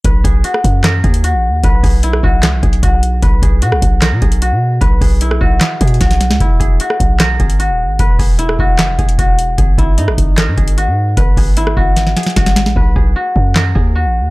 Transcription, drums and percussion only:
0.05 kick, closed hi-hat
0.24 kick, closed hi-hat
0.44 closed hi-hat
0.54 cross-stick
0.64 kick, closed hi-hat
0.84 cross-stick, snare, clap, closed hi-hat
1.04 kick, closed hi-hat
1.14 closed hi-hat
1.24 closed hi-hat
1.64 kick, closed hi-hat
1.83 kick, open hi-hat
2.03 closed hi-hat
2.13 cross-stick
2.23 kick
2.43 cross-stick, snare, clap, closed hi-hat
2.63 kick, closed hi-hat
2.73 closed hi-hat
2.83 kick, closed hi-hat
3.03 closed hi-hat
3.23 kick, closed hi-hat
3.42 kick, closed hi-hat
3.62 closed hi-hat
3.72 cross-stick
3.82 kick, closed hi-hat
4.02 cross-stick, snare, clap, closed hi-hat
4.22 kick, closed hi-hat
4.32 closed hi-hat
4.42 closed hi-hat
4.81 kick, closed hi-hat
5.01 kick, open hi-hat
5.21 closed hi-hat
5.31 cross-stick
5.41 kick
5.61 snare, clap, closed hi-hat
5.81 kick, closed hi-hat
5.87 closed hi-hat
5.94 closed hi-hat
6.01 kick, snare, closed hi-hat
6.11 snare, closed hi-hat
6.21 snare, closed hi-hat
6.31 snare
6.40 kick, closed hi-hat
6.60 kick, closed hi-hat
6.80 closed hi-hat
6.90 cross-stick
7.00 kick, closed hi-hat
7.20 cross-stick, snare, clap, closed hi-hat
7.40 kick, closed hi-hat
7.50 closed hi-hat
7.60 closed hi-hat
7.99 kick, closed hi-hat
8.19 kick, open hi-hat
8.39 closed hi-hat
8.49 cross-stick
8.59 kick
8.79 cross-stick, snare, clap, closed hi-hat
8.99 kick, closed hi-hat
9.09 closed hi-hat
9.19 kick, closed hi-hat
9.39 closed hi-hat
9.58 kick, closed hi-hat
9.78 kick, closed hi-hat
9.98 closed hi-hat
10.08 cross-stick
10.18 kick, closed hi-hat
10.38 cross-stick, snare, clap, closed hi-hat
10.58 kick, closed hi-hat
10.68 closed hi-hat
10.78 closed hi-hat
11.17 kick, closed hi-hat
11.37 kick, open hi-hat
11.57 closed hi-hat
11.67 cross-stick
11.77 kick
11.97 snare, closed hi-hat
12.07 snare
12.17 snare, closed hi-hat
12.23 snare, closed hi-hat
12.30 closed hi-hat
12.36 kick, snare, closed hi-hat
12.46 snare, closed hi-hat
12.56 snare, closed hi-hat
12.66 snare
12.76 kick
12.96 kick
13.36 kick
13.56 snare, clap
13.76 kick

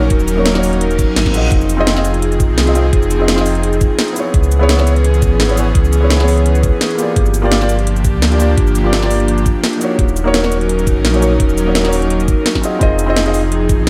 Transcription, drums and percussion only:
0.10 kick, closed hi-hat
0.20 shaker
0.28 closed hi-hat, shaker
0.46 snare, closed hi-hat
0.55 snare, closed hi-hat, shaker
0.63 open hi-hat, shaker
0.73 closed hi-hat
0.81 closed hi-hat
0.91 closed hi-hat, shaker
0.99 kick, closed hi-hat, shaker
1.16 snare, closed hi-hat
1.26 kick, snare, closed hi-hat
1.34 closed hi-hat, shaker
1.52 kick, closed hi-hat
1.61 shaker
1.69 closed hi-hat, shaker
1.87 snare, closed hi-hat
1.96 snare, shaker
2.05 closed hi-hat, shaker
2.14 closed hi-hat
2.22 closed hi-hat
2.32 closed hi-hat, shaker
2.40 kick, closed hi-hat, shaker
2.58 snare, closed hi-hat
2.67 closed hi-hat
2.75 closed hi-hat, shaker
2.93 kick, closed hi-hat
3.03 shaker
3.11 closed hi-hat, shaker
3.28 snare, closed hi-hat
3.38 snare, shaker
3.46 open hi-hat, shaker
3.55 closed hi-hat
3.63 closed hi-hat
3.73 closed hi-hat, shaker
3.81 kick, closed hi-hat, shaker
3.99 snare, closed hi-hat
4.08 closed hi-hat
4.16 closed hi-hat, shaker
4.34 kick, closed hi-hat
4.43 shaker
4.52 closed hi-hat, shaker
4.69 snare, closed hi-hat
4.79 snare, shaker
4.87 closed hi-hat, shaker
4.96 closed hi-hat
5.04 closed hi-hat
5.14 closed hi-hat, shaker
5.22 kick, closed hi-hat, shaker
5.40 snare, closed hi-hat
5.49 closed hi-hat
5.57 closed hi-hat, shaker
5.75 kick, closed hi-hat
5.85 shaker
5.93 closed hi-hat, shaker
6.10 snare, closed hi-hat
6.20 snare, shaker
6.28 open hi-hat, shaker
6.38 closed hi-hat
6.46 closed hi-hat
6.55 closed hi-hat, shaker
6.63 kick, closed hi-hat, shaker
6.81 snare, closed hi-hat
6.91 closed hi-hat
6.99 closed hi-hat, shaker
7.16 kick, closed hi-hat
7.26 shaker
7.34 closed hi-hat, shaker
7.52 snare, closed hi-hat
7.61 snare, shaker
7.69 closed hi-hat, shaker
7.79 closed hi-hat
7.87 closed hi-hat
7.96 closed hi-hat, shaker
8.04 kick, closed hi-hat, shaker
8.22 snare, closed hi-hat
8.32 closed hi-hat
8.40 closed hi-hat, shaker
8.58 kick, closed hi-hat
8.67 shaker
8.75 closed hi-hat, shaker
8.93 snare, closed hi-hat
9.02 snare, shaker
9.11 open hi-hat, shaker
9.20 closed hi-hat
9.28 closed hi-hat
9.38 closed hi-hat, shaker
9.46 kick, closed hi-hat, shaker
9.64 snare, closed hi-hat
9.73 closed hi-hat
9.81 closed hi-hat, shaker
9.99 kick, closed hi-hat
10.08 shaker
10.16 closed hi-hat, shaker
10.34 snare, closed hi-hat
10.44 snare, shaker
10.52 closed hi-hat, shaker
10.61 closed hi-hat
10.69 closed hi-hat
10.79 closed hi-hat, shaker
10.87 kick, closed hi-hat, shaker
11.05 snare, closed hi-hat
11.14 closed hi-hat
11.22 closed hi-hat, shaker
11.40 kick, closed hi-hat
11.49 shaker
11.58 closed hi-hat, shaker
11.75 snare, closed hi-hat
11.85 snare, closed hi-hat, shaker
11.93 open hi-hat, shaker
12.02 closed hi-hat
12.10 closed hi-hat
12.20 closed hi-hat, shaker
12.28 kick, closed hi-hat, shaker
12.46 snare, closed hi-hat
12.55 kick, snare, closed hi-hat
12.64 closed hi-hat, shaker
12.81 kick, closed hi-hat
12.99 closed hi-hat, shaker
13.16 snare, closed hi-hat
13.26 closed hi-hat
13.34 open hi-hat, shaker
13.52 closed hi-hat
13.69 kick, closed hi-hat, shaker

